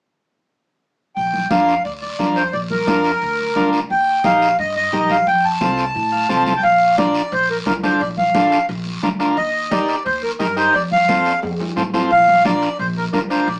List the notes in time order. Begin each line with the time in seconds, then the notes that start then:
1.16 A#1 G5, high conga, long guiro
1.34 high conga
1.51 F2 D4 F4 A#4 F5, high conga, short guiro
1.68 short guiro
1.85 D2 D5, long guiro
2.01 D5, high conga
2.19 F2 D4 F4 A#4, high conga, short guiro
2.36 C5, short guiro
2.53 A#1 D5, high conga, long guiro
2.71 A#4, high conga
2.87 F2 D4 F4 A#4, high conga, short guiro
3.04 short guiro
3.22 D2, long guiro
3.39 high conga
3.56 D2 D4 F4 A#4, high conga, short guiro
3.73 short guiro
3.90 D#2 G5, high conga, long guiro
4.24 A#1 D#4 G4 A#4 F5, high conga, short guiro
4.42 short guiro
4.59 G2 D#5, long guiro
4.76 D#5, high conga
4.93 A#1 D#4 G4 A#4, high conga, short guiro
5.10 F5, high conga, short guiro
5.27 F2 G5, high conga, long guiro
5.45 A5
5.61 C2 C4 F4 A4, high conga, short guiro
5.78 short guiro
5.95 A2, long guiro
6.12 F5, high conga
6.29 C2 C4 F4 A4 A5, high conga, short guiro
6.46 high conga, short guiro
6.56 G5
6.63 A#1 F5, high conga, high timbale, long guiro
6.97 D4 F4 A#4 D5, high conga, high timbale, short guiro
7.15 high timbale, short guiro
7.32 A#1 C5, high timbale, long guiro
7.50 A#4, high conga
7.66 D2 D4 F4 A#4, high conga, high timbale, low timbale, short guiro
7.83 D4 F4 A4 C5, high conga, high timbale, short guiro
8.00 A#1 D5, high conga, high timbale, long guiro
8.17 F5, high conga
8.35 D4 F4 A4, high conga, high timbale, short guiro
8.52 high timbale, short guiro
8.69 A#1, high timbale, long guiro
8.86 high conga
9.03 D2 D4 F4 A#4, high conga, high timbale, short guiro
9.19 D4 F4 A#4, high timbale, short guiro
9.37 D#2 D#5, high conga, high timbale, long guiro
9.71 D#4 G4 A#4 D5, high conga, high timbale, short guiro
9.89 high timbale, short guiro
10.06 D#2 C5, high timbale, long guiro
10.23 A#4, high conga
10.39 G2 D#4 G4 A#4, high conga, high timbale, short guiro
10.56 D#4 G4 A#4 C5, high timbale, short guiro
10.74 F2 D5, high conga, high timbale, long guiro
10.92 F5, high conga
11.08 C4 F4 A4, high conga, high timbale, short guiro
11.25 high timbale, short guiro
11.42 F2, high timbale, long guiro
11.60 high conga, low timbale
11.76 A2 C4 F4 A4, high conga, low timbale, short guiro
11.94 C4 F4 A4, high conga, low timbale, short guiro
12.11 A#1 F5, high timbale, long guiro
12.28 high conga
12.45 D4 F4 A#4 D5, high conga, high timbale, short guiro
12.62 high timbale, short guiro
12.79 A#1 C5, high timbale, long guiro
12.96 A#4, high conga
13.13 D2 D4 F4 A#4, high conga, high timbale, low timbale, short guiro
13.30 D4 F4 A#4 C5, high timbale, short guiro
13.48 A#1 D5, high conga, high timbale, long guiro